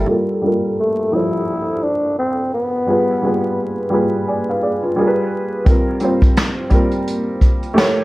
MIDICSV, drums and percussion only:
0, 0, Header, 1, 2, 480
1, 0, Start_track
1, 0, Tempo, 697674
1, 59, Time_signature, 4, 2, 24, 8
1, 5533, End_track
2, 0, Start_track
2, 0, Title_t, "Drums"
2, 3896, Note_on_c, 9, 36, 106
2, 3896, Note_on_c, 9, 42, 77
2, 3965, Note_off_c, 9, 36, 0
2, 3965, Note_off_c, 9, 42, 0
2, 4126, Note_on_c, 9, 42, 54
2, 4194, Note_off_c, 9, 42, 0
2, 4279, Note_on_c, 9, 36, 90
2, 4285, Note_on_c, 9, 42, 38
2, 4347, Note_off_c, 9, 36, 0
2, 4354, Note_off_c, 9, 42, 0
2, 4379, Note_on_c, 9, 42, 70
2, 4384, Note_on_c, 9, 38, 99
2, 4447, Note_off_c, 9, 42, 0
2, 4453, Note_off_c, 9, 38, 0
2, 4610, Note_on_c, 9, 42, 58
2, 4617, Note_on_c, 9, 36, 70
2, 4679, Note_off_c, 9, 42, 0
2, 4686, Note_off_c, 9, 36, 0
2, 4755, Note_on_c, 9, 42, 42
2, 4824, Note_off_c, 9, 42, 0
2, 4867, Note_on_c, 9, 42, 78
2, 4936, Note_off_c, 9, 42, 0
2, 5100, Note_on_c, 9, 36, 73
2, 5101, Note_on_c, 9, 42, 58
2, 5169, Note_off_c, 9, 36, 0
2, 5170, Note_off_c, 9, 42, 0
2, 5245, Note_on_c, 9, 42, 43
2, 5314, Note_off_c, 9, 42, 0
2, 5348, Note_on_c, 9, 42, 58
2, 5351, Note_on_c, 9, 38, 89
2, 5417, Note_off_c, 9, 42, 0
2, 5420, Note_off_c, 9, 38, 0
2, 5533, End_track
0, 0, End_of_file